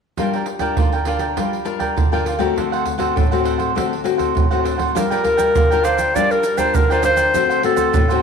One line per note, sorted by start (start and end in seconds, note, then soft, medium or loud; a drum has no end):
0.17 0.75 G3 medium
0.17 0.46 D4 soft
0.17 0.32 F4 soft
0.17 0.46 F4 soft
0.17 0.32 A#4 soft
0.17 0.47 A#4 soft
0.17 0.32 D5 soft
0.17 0.32 G5 soft
0.17 pandeiro medium
0.17 surdo soft
0.33 0.46 A#4 soft
0.33 0.46 D5 medium
0.33 0.47 G5 medium
0.33 pandeiro soft
0.46 muted cavaquinho stroke soft
0.46 pandeiro medium
0.59 1.01 D4 soft
0.59 1.02 F4 soft
0.59 1.02 A#4 medium
0.59 0.76 A#4 soft
0.59 0.76 D5 medium
0.59 0.75 G5 medium
0.59 pandeiro soft
0.59 surdo soft
0.77 1.34 D3 medium
0.77 0.91 F4 soft
0.77 0.92 A#4 soft
0.77 0.92 D5 soft
0.77 0.92 G5 soft
0.77 pandeiro medium
0.77 surdo medium
0.92 1.06 A#4 soft
0.92 1.06 D5 soft
0.92 1.06 G5 medium
0.92 pandeiro soft
1.05 1.45 D4 soft
1.05 1.20 F4 medium
1.05 1.46 F4 soft
1.05 1.20 A#4 medium
1.05 1.46 A#4 soft
1.05 1.19 D5 medium
1.05 1.19 G5 medium
1.05 pandeiro medium
1.19 1.36 A#4 soft
1.19 1.35 D5 medium
1.19 1.35 G5 medium
1.19 pandeiro medium
1.19 surdo soft
1.37 1.94 G3 medium
1.37 1.65 F4 soft
1.37 1.65 A#4 soft
1.37 1.65 D5 soft
1.37 1.65 G5 soft
1.37 pandeiro medium
1.37 surdo soft
1.53 pandeiro soft
1.65 1.94 D4 soft
1.65 1.94 F4 soft
1.65 1.94 A#4 medium
1.65 muted cavaquinho stroke soft
1.65 pandeiro medium
1.79 2.10 A#4 medium
1.79 2.10 D5 medium
1.79 2.09 G5 medium
1.79 pandeiro soft
1.79 surdo soft
1.96 2.53 D3 medium
1.96 pandeiro medium
1.96 surdo medium
2.12 2.37 D4 soft
2.12 2.37 F4 medium
2.12 2.37 A#4 medium
2.12 2.24 A#4 soft
2.12 2.25 D5 soft
2.12 2.26 G5 medium
2.12 pandeiro soft
2.25 2.40 F4 soft
2.25 2.40 A#4 soft
2.25 2.39 D5 soft
2.25 2.38 G5 soft
2.25 pandeiro medium
2.39 2.95 A3 medium
2.39 2.95 C4 medium
2.39 2.96 F#4 medium
2.39 2.55 A#4 soft
2.39 2.55 D5 soft
2.39 2.54 G5 soft
2.39 pandeiro soft
2.39 surdo soft
2.56 3.13 D3 medium
2.56 2.70 D4 soft
2.56 2.71 A4 soft
2.56 2.71 C5 soft
2.56 2.71 F#5 soft
2.56 pandeiro medium
2.56 surdo soft
2.72 2.84 A4 soft
2.72 2.85 C5 medium
2.72 2.86 F#5 medium
2.72 pandeiro soft
2.86 muted cavaquinho stroke soft
2.86 pandeiro medium
2.86 surdo soft
2.98 3.25 A3 medium
2.98 3.25 C4 medium
2.98 3.25 F#4 medium
2.98 3.15 A4 soft
2.98 3.14 C5 soft
2.98 3.14 F#5 medium
2.98 pandeiro soft
2.98 surdo soft
3.16 3.73 A2 medium
3.16 3.30 D4 soft
3.16 3.30 A4 soft
3.16 3.30 C5 soft
3.16 3.30 F#5 soft
3.16 pandeiro medium
3.16 surdo medium
3.31 3.72 A3 medium
3.31 3.72 C4 medium
3.31 3.72 F#4 medium
3.31 3.43 A4 soft
3.31 3.44 C5 soft
3.31 3.44 F#5 medium
3.31 pandeiro soft
3.44 3.59 D4 medium
3.44 3.58 A4 medium
3.44 3.58 C5 medium
3.44 3.57 F#5 medium
3.44 pandeiro medium
3.58 3.74 A4 soft
3.58 3.74 C5 medium
3.58 3.73 F#5 medium
3.58 pandeiro soft
3.58 surdo soft
3.75 4.32 D3 medium
3.75 3.93 A3 soft
3.75 3.94 C4 soft
3.75 4.03 D4 soft
3.75 3.94 F#4 soft
3.75 4.03 A4 soft
3.75 4.03 C5 soft
3.75 4.04 F#5 medium
3.75 pandeiro medium
3.75 surdo medium
3.93 pandeiro soft
4.04 4.45 A3 medium
4.04 4.45 C4 medium
4.04 4.45 F#4 medium
4.04 muted cavaquinho stroke soft
4.04 pandeiro medium
4.18 4.49 A4 soft
4.18 4.48 C5 soft
4.18 4.48 F#5 medium
4.18 pandeiro soft
4.18 surdo soft
4.35 4.92 A2 medium
4.35 pandeiro medium
4.35 surdo medium
4.51 4.91 A3 medium
4.51 4.91 C4 soft
4.51 4.91 F#4 medium
4.51 4.63 A4 soft
4.51 4.64 C5 medium
4.51 4.64 F#5 medium
4.51 pandeiro soft
4.63 4.78 D4 soft
4.63 4.78 A4 soft
4.63 4.77 C5 soft
4.63 4.76 F#5 soft
4.63 pandeiro medium
4.78 4.94 A4 soft
4.78 4.93 C5 medium
4.78 4.93 F#5 medium
4.78 pandeiro soft
4.78 surdo soft
4.95 5.52 G3 medium
4.95 5.04 D4 soft
4.95 5.09 F4 soft
4.95 5.04 F4 soft
4.95 5.09 A#4 soft
4.95 5.05 A#4 medium
4.95 5.86 A#4 medium
4.95 5.09 D5 soft
4.95 5.09 G5 soft
4.95 pandeiro medium
4.95 shaker medium
4.95 surdo medium
5.10 5.21 D4 medium
5.10 5.21 F4 medium
5.10 5.21 A#4 medium
5.10 5.23 A#4 medium
5.10 5.23 D5 medium
5.10 5.24 G5 medium
5.10 pandeiro soft
5.10 shaker soft
5.24 5.53 D4 soft
5.24 5.53 F4 soft
5.24 5.53 A#4 medium
5.24 muted cavaquinho stroke soft
5.24 pandeiro medium
5.24 surdo soft
5.37 5.53 A#4 medium
5.37 5.53 D5 medium
5.37 5.52 G5 medium
5.37 pandeiro medium
5.37 shaker medium
5.37 surdo soft
5.55 6.12 D3 medium
5.55 5.69 F4 soft
5.55 5.69 A#4 soft
5.55 5.69 D5 soft
5.55 5.69 G5 soft
5.55 pandeiro medium
5.55 shaker medium
5.55 surdo medium
5.71 6.11 D4 medium
5.71 6.11 F4 medium
5.71 5.83 A#4 soft
5.71 6.11 A#4 medium
5.71 5.83 D5 soft
5.71 5.84 G5 medium
5.71 pandeiro soft
5.71 shaker soft
5.83 5.98 F4 medium
5.83 5.98 A#4 medium
5.83 6.17 C5 medium
5.83 5.97 D5 medium
5.83 5.96 G5 medium
5.83 pandeiro medium
5.83 shaker medium
5.97 6.13 A#4 soft
5.97 6.13 D5 medium
5.97 6.12 G5 soft
5.97 pandeiro medium
5.97 shaker medium
5.97 surdo soft
6.15 6.72 G3 medium
6.15 6.43 D4 medium
6.15 6.43 F4 soft
6.15 6.44 F4 soft
6.15 6.43 A#4 soft
6.15 6.44 A#4 medium
6.15 6.33 D5 medium
6.15 6.43 D5 soft
6.15 6.44 G5 soft
6.15 pandeiro medium
6.15 shaker medium
6.15 surdo medium
6.31 6.59 A#4 medium
6.31 pandeiro soft
6.31 shaker soft
6.43 muted cavaquinho stroke soft
6.43 pandeiro medium
6.43 shaker medium
6.57 6.84 D4 medium
6.57 6.84 F4 medium
6.57 6.84 A#4 medium
6.57 6.88 A#4 medium
6.57 6.76 C5 medium
6.57 6.88 D5 medium
6.57 6.87 G5 medium
6.57 pandeiro medium
6.57 shaker medium
6.57 surdo soft
6.75 7.32 D3 medium
6.75 6.94 A#4 medium
6.75 pandeiro medium
6.75 shaker medium
6.75 surdo medium
6.90 7.01 D4 medium
6.90 7.01 F4 medium
6.90 7.02 A#4 soft
6.90 7.01 A#4 medium
6.90 7.05 C5 medium
6.90 7.03 D5 medium
6.90 7.03 G5 medium
6.90 pandeiro soft
6.90 shaker soft
7.03 7.31 D4 soft
7.03 7.17 F4 soft
7.03 7.32 F4 soft
7.03 7.17 A#4 soft
7.03 7.32 A#4 medium
7.03 7.60 C5 medium
7.03 7.16 D5 soft
7.03 7.15 G5 medium
7.03 pandeiro medium
7.03 shaker medium
7.16 7.32 A#4 soft
7.16 7.32 D5 medium
7.16 7.31 G5 medium
7.16 pandeiro medium
7.16 shaker medium
7.16 surdo soft
7.34 7.92 D3 medium
7.34 7.60 A3 soft
7.34 7.60 C4 medium
7.34 7.48 D4 soft
7.34 7.60 F#4 medium
7.34 7.48 A4 soft
7.34 7.48 C5 medium
7.34 7.48 F#5 medium
7.34 pandeiro medium
7.34 shaker medium
7.34 surdo soft
7.49 7.61 A4 soft
7.49 7.62 C5 medium
7.49 7.62 F#5 medium
7.49 pandeiro soft
7.49 shaker soft
7.62 8.04 A3 medium
7.62 8.04 C4 medium
7.62 8.04 F#4 medium
7.62 8.20 A4 medium
7.62 muted cavaquinho stroke soft
7.62 pandeiro medium
7.76 7.92 A4 soft
7.76 7.92 C5 medium
7.76 7.91 F#5 medium
7.76 pandeiro medium
7.76 shaker medium
7.76 surdo soft
7.92 8.22 A2 medium
7.92 8.07 D4 soft
7.92 8.07 A4 soft
7.92 8.07 C5 soft
7.92 8.07 F#5 soft
7.92 pandeiro medium
7.92 shaker medium
7.92 surdo loud
8.08 8.22 A3 medium
8.08 8.22 C4 medium
8.08 8.22 F#4 medium
8.08 8.21 A4 soft
8.08 8.21 C5 medium
8.08 8.22 F#5 medium
8.08 pandeiro soft
8.08 shaker soft